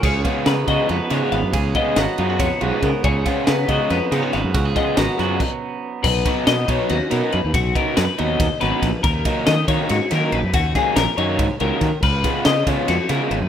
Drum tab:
CC |x------|-------|-------|----x--|
RD |xxxxxxx|xxxxxxx|xxxxxxx|xxxx---|
SD |--o--o-|--o----|-oo-ooo|-ooo---|
BD |oo-o---|oo--o-o|oo-o---|oo--o--|

CC |x------|-------|-------|-------|
RD |-xxxxxx|xxxxxxx|xxxxxxx|xxxxxxx|
SD |-oo--o-|--o--oo|--o-oo-|-oo---o|
BD |oo-o---|oo--o-o|oo-o---|oo--o-o|

CC |x------|
RD |-xxxxxx|
SD |--oooo-|
BD |oo-o---|